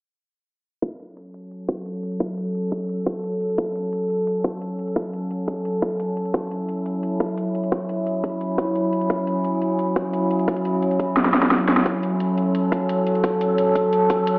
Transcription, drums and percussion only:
0.82 kick, closed hi-hat
1.00 closed hi-hat
1.17 closed hi-hat
1.34 closed hi-hat
1.51 closed hi-hat
1.69 kick, closed hi-hat
1.86 closed hi-hat
2.03 closed hi-hat
2.12 closed hi-hat
2.20 kick, closed hi-hat
2.38 closed hi-hat
2.55 closed hi-hat
2.72 kick, closed hi-hat
2.89 closed hi-hat
3.06 kick, closed hi-hat
3.24 closed hi-hat
3.41 closed hi-hat
3.50 closed hi-hat
3.58 kick, closed hi-hat
3.76 closed hi-hat
3.93 closed hi-hat
4.10 closed hi-hat
4.27 closed hi-hat
4.44 kick, closed hi-hat
4.62 closed hi-hat
4.79 closed hi-hat
4.87 closed hi-hat
4.96 kick, closed hi-hat
5.13 closed hi-hat
5.31 closed hi-hat
5.48 kick, closed hi-hat
5.65 closed hi-hat
5.82 kick, closed hi-hat
6.00 closed hi-hat
6.17 closed hi-hat
6.25 closed hi-hat
6.34 kick, closed hi-hat
6.51 closed hi-hat
6.69 closed hi-hat
6.86 closed hi-hat
7.03 closed hi-hat
7.20 kick, closed hi-hat
7.37 closed hi-hat
7.55 closed hi-hat
7.63 closed hi-hat
7.72 kick, closed hi-hat
7.89 closed hi-hat
8.06 closed hi-hat
8.24 kick, closed hi-hat
8.41 closed hi-hat
8.58 kick, closed hi-hat
8.75 closed hi-hat
8.93 closed hi-hat
9.01 closed hi-hat
9.10 kick, closed hi-hat
9.27 closed hi-hat
9.44 closed hi-hat
9.62 closed hi-hat
9.79 closed hi-hat
9.96 kick, closed hi-hat
10.13 closed hi-hat
10.31 closed hi-hat
10.39 closed hi-hat
10.48 kick, closed hi-hat
10.57 closed hi-hat
10.65 closed hi-hat
10.82 closed hi-hat
10.91 closed hi-hat
11.00 kick, closed hi-hat
11.17 snare, closed hi-hat
11.25 snare
11.34 kick, snare, closed hi-hat
11.43 snare
11.51 snare, closed hi-hat
11.69 snare, closed hi-hat
11.77 snare, closed hi-hat
11.86 kick, closed hi-hat
12.03 closed hi-hat
12.20 closed hi-hat
12.38 closed hi-hat
12.55 closed hi-hat
12.72 kick, closed hi-hat
12.89 closed hi-hat
13.07 closed hi-hat
13.15 closed hi-hat
13.24 kick, closed hi-hat
13.41 closed hi-hat
13.58 closed hi-hat
13.75 kick, closed hi-hat
13.93 closed hi-hat
14.10 kick, closed hi-hat
14.27 closed hi-hat

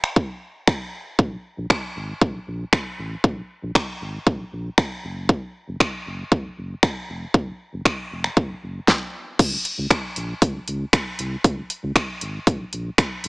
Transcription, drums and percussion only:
0.04 finger snap
0.16 kick
0.67 finger snap, kick
1.19 kick
1.70 finger snap, kick
2.21 kick
2.73 finger snap, kick
3.24 kick
3.75 finger snap, kick
4.27 kick
4.78 finger snap, kick
5.29 kick
5.80 finger snap, kick
6.32 kick
6.83 finger snap, kick
7.34 kick
7.85 finger snap, kick
8.24 finger snap
8.37 kick
8.88 kick, snare
9.39 kick, closed hi-hat, crash
9.65 closed hi-hat
9.90 finger snap, kick, closed hi-hat
10.16 closed hi-hat
10.42 kick, closed hi-hat
10.68 closed hi-hat
10.93 finger snap, kick, closed hi-hat
11.19 closed hi-hat
11.44 kick, closed hi-hat
11.70 closed hi-hat
11.96 finger snap, kick, closed hi-hat
12.21 closed hi-hat
12.47 kick, closed hi-hat
12.73 closed hi-hat
12.98 finger snap, kick, closed hi-hat
13.24 closed hi-hat

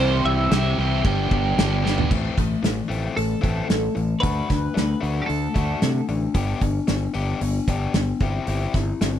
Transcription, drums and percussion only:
0.51 snare, crash
1.05 kick, crash
1.31 kick
1.58 snare, crash
1.86 snare
1.98 floor tom
2.11 kick, crash
2.38 kick, open hi-hat
2.64 snare, open hi-hat
2.91 open hi-hat
3.17 open hi-hat
3.44 kick, open hi-hat
3.70 snare, open hi-hat
3.97 open hi-hat
4.23 kick, open hi-hat
4.50 kick, snare, open hi-hat
4.77 snare, open hi-hat
5.03 open hi-hat
5.29 open hi-hat
5.55 kick, open hi-hat
5.82 snare, open hi-hat
6.09 open hi-hat
6.34 kick, open hi-hat
6.61 kick, open hi-hat
6.88 snare, open hi-hat
7.14 open hi-hat
7.41 open hi-hat
7.68 kick, open hi-hat
7.94 snare, open hi-hat
8.20 kick, open hi-hat
8.47 open hi-hat
8.74 kick, snare, open hi-hat
9.01 snare, open hi-hat

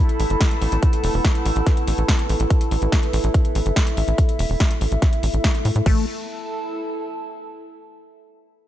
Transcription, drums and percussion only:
0.09 closed hi-hat
0.20 open hi-hat
0.30 closed hi-hat
0.41 kick, snare, closed hi-hat
0.51 closed hi-hat
0.62 open hi-hat
0.72 closed hi-hat
0.83 kick, closed hi-hat
0.93 closed hi-hat
1.04 open hi-hat
1.14 open hi-hat
1.25 kick, snare, closed hi-hat
1.35 closed hi-hat
1.46 open hi-hat
1.56 closed hi-hat
1.67 kick, snare, closed hi-hat
1.77 closed hi-hat
1.88 open hi-hat
1.98 closed hi-hat
2.08 kick, snare, closed hi-hat
2.19 closed hi-hat
2.29 open hi-hat
2.40 closed hi-hat
2.50 kick, closed hi-hat
2.61 closed hi-hat
2.71 open hi-hat
2.82 closed hi-hat
2.92 kick, snare, closed hi-hat
3.03 closed hi-hat
3.13 open hi-hat
3.24 closed hi-hat
3.34 kick, closed hi-hat
3.45 closed hi-hat
3.55 open hi-hat
3.66 closed hi-hat
3.76 kick, snare, closed hi-hat
3.87 closed hi-hat
3.97 open hi-hat
4.08 closed hi-hat
4.18 kick, closed hi-hat
4.29 closed hi-hat
4.39 open hi-hat
4.50 open hi-hat
4.60 kick, snare, closed hi-hat
4.71 closed hi-hat
4.81 open hi-hat
4.92 closed hi-hat
5.02 kick, snare, closed hi-hat
5.13 closed hi-hat
5.23 open hi-hat
5.34 closed hi-hat
5.44 kick, snare, closed hi-hat
5.55 closed hi-hat
5.65 open hi-hat
5.76 closed hi-hat
5.86 kick, crash

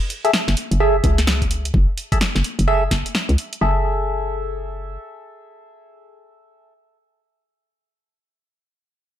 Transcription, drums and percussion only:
0.10 open hi-hat
0.25 closed hi-hat
0.33 snare
0.48 snare, closed hi-hat
0.57 open hi-hat
0.72 closed hi-hat
1.04 kick, open hi-hat
1.18 snare, closed hi-hat
1.27 snare
1.42 kick, closed hi-hat
1.51 open hi-hat
1.65 closed hi-hat
1.74 kick
1.98 open hi-hat
2.12 kick, closed hi-hat
2.21 snare, open hi-hat
2.36 snare, closed hi-hat
2.44 open hi-hat
2.59 closed hi-hat
2.91 kick, snare, open hi-hat
3.06 closed hi-hat
3.15 snare
3.29 closed hi-hat
3.38 open hi-hat
3.53 closed hi-hat

